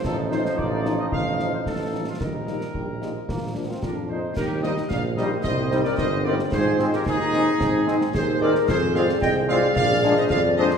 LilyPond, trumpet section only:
\new Staff \with { instrumentName = "Trumpet section" } { \time 2/4 \key ees \major \tempo 4 = 111 a'8 c''8 d''8. ees''16 | f''8. c''16 a'8. f'16 | bes'2~ | bes'4 bes'8 c''8 |
bes'8 ees''8 f''8 ees''8 | ees''8. d''16 ees''8 d''8 | c''8. bes'16 aes'4~ | aes'4 c''8 d''8 |
c''8 f''8 g''8 f''8 | f''8. ees''16 f''8 ees''8 | }